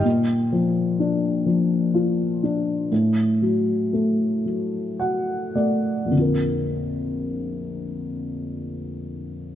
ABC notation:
X:1
M:6/8
L:1/8
Q:3/8=38
K:Bb
V:1 name="Upright piano"
B,, F, D F, F D | A,, ^F, A, F, [^F^f] [A,d] | [B,,,F,,D,CFB]6 |]